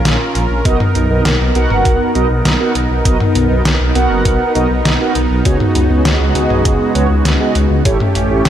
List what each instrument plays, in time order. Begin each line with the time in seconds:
Already playing: supersaw synth C#4 F4 A#4
0.05 detuned saw bass A#1, snare, closed hi-hat
0.35 detuned saw bass A#1, closed hi-hat
0.50 detuned saw bass A#1
0.65 detuned saw bass B1, analog polysynth B3 F#4 A#4 D#5, supersaw synth B3 D#4, kick, closed hi-hat
0.80 mid tom
0.95 detuned saw bass B1, closed hi-hat
1.10 detuned saw bass B1, analog polysynth B3 F#4 A#4 D#5
1.25 detuned saw bass B1, snare, closed hi-hat
1.40 detuned saw bass B1
1.55 detuned saw bass B1, analog polysynth B3 F#4 A#4 F#5, closed hi-hat
1.70 detuned saw bass F#1, mid tom
1.85 detuned saw bass B1, kick, closed hi-hat
2.15 detuned saw bass B1, analog polysynth B3 F#4 A#4 D#5, closed hi-hat
2.30 detuned saw bass B1
2.45 detuned saw bass B1, snare, closed hi-hat
2.60 analog polysynth B3 F#4 A#4 F#5
2.75 detuned saw bass B1, closed hi-hat
2.90 detuned saw bass B1
3.05 detuned saw bass B1, analog polysynth B3 F#4 A#4 D#5, kick, closed hi-hat
3.20 mid tom
3.35 detuned saw bass B1, closed hi-hat
3.50 detuned saw bass B1, analog polysynth B3 F#4 A#4 D#5
3.65 detuned saw bass B1, snare, closed hi-hat
3.80 detuned saw bass B1
3.95 detuned saw bass B1, analog polysynth B3 F#4 A#4 F#5, closed hi-hat
4.10 detuned saw bass F#1
4.25 detuned saw bass B1, kick, closed hi-hat
4.55 detuned saw bass B1, analog polysynth B3 F#4 A#4 D#5, closed hi-hat
4.70 detuned saw bass B1
4.85 detuned saw bass B1, snare, closed hi-hat
5.00 analog polysynth B3 F#4 A#4 F#5
5.15 detuned saw bass B1, closed hi-hat
5.30 detuned saw bass B1
5.45 detuned saw bass C#2, supersaw synth C#3 G#3, analog polysynth B3 F#4 G#4 C#5, kick, closed hi-hat
5.60 mid tom
5.75 detuned saw bass C#2, closed hi-hat
5.90 detuned saw bass C#2, analog polysynth B3 F#4 G#4 C#5
6.05 detuned saw bass C#2, snare, closed hi-hat
6.20 detuned saw bass C#2
6.35 detuned saw bass C#2, analog polysynth B3 F#4 G#4 D#5, closed hi-hat
6.50 detuned saw bass B1, mid tom
6.65 detuned saw bass C#2, kick, closed hi-hat
6.95 detuned saw bass C#2, analog polysynth B3 F#4 G#4 C#5, closed hi-hat
7.10 detuned saw bass C#2
7.25 detuned saw bass C#2, snare, closed hi-hat
7.40 analog polysynth B3 F#4 G#4 D#5
7.55 detuned saw bass C#2, closed hi-hat
7.70 detuned saw bass C#2
7.85 detuned saw bass A1, analog polysynth A3 E4 G4 C#5, supersaw synth A3 C#4 G4, kick, closed hi-hat
8.00 mid tom
8.15 detuned saw bass A1, closed hi-hat
8.30 detuned saw bass A1, analog polysynth A3 E4 G4 C#5
8.45 detuned saw bass A1, snare, closed hi-hat